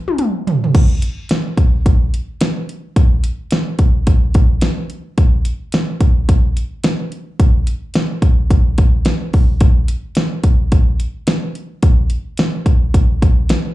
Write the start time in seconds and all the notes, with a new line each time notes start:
0.08 high tom
0.18 closed hi-hat, mid tom
0.47 closed hi-hat, floor tom
0.64 floor tom
0.75 kick, closed hi-hat, crash
1.02 closed hi-hat
1.29 snare, closed hi-hat
1.57 kick, closed hi-hat
1.86 kick, closed hi-hat
2.14 closed hi-hat
2.41 snare, closed hi-hat
2.69 closed hi-hat
2.96 kick, closed hi-hat
3.24 closed hi-hat
3.51 snare, closed hi-hat
3.79 kick, closed hi-hat
4.07 kick, closed hi-hat
4.34 kick, closed hi-hat
4.61 snare, closed hi-hat
4.90 closed hi-hat
5.18 kick, closed hi-hat
5.45 closed hi-hat
5.72 snare, closed hi-hat
6.01 kick, closed hi-hat
6.29 kick, closed hi-hat
6.57 closed hi-hat
6.84 snare, closed hi-hat
7.12 closed hi-hat
7.40 kick, closed hi-hat
7.67 closed hi-hat
7.94 snare, closed hi-hat
8.22 kick, closed hi-hat
8.51 kick, closed hi-hat
8.78 kick, closed hi-hat
9.05 snare, closed hi-hat
9.33 kick, open hi-hat
9.61 kick, closed hi-hat
9.88 closed hi-hat
10.15 snare, closed hi-hat
10.43 kick, closed hi-hat
10.72 kick, closed hi-hat
11.00 closed hi-hat
11.27 snare, closed hi-hat
11.55 closed hi-hat
11.83 kick, closed hi-hat
12.10 closed hi-hat
12.37 snare, closed hi-hat
12.66 kick, closed hi-hat
12.94 kick, closed hi-hat
13.22 kick, closed hi-hat
13.49 snare, closed hi-hat